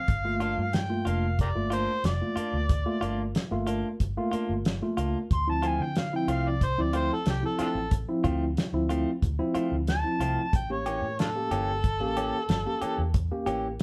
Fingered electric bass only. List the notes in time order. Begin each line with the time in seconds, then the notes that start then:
0.08 G1
0.58 G2
1.06 F1
1.56 G1
2.04 F1
2.36 muted fingered electric bass stroke
2.53 D2
3.02 G1
3.51 G1
4.01 G1
4.33 muted fingered electric bass stroke
4.49 G1
4.98 C#2
5.31 D2
5.80 D3
6.28 C2
6.78 D2
7.26 C2
7.59 muted fingered electric bass stroke
7.75 A1
8.24 D2
8.73 D2
9.23 D2
9.55 muted fingered electric bass stroke
9.72 D2
10.20 C2
10.53 A1
11.02 A2
11.51 G1
12.00 A1
12.49 G1
12.82 muted fingered electric bass stroke
12.98 E2
13.46 A1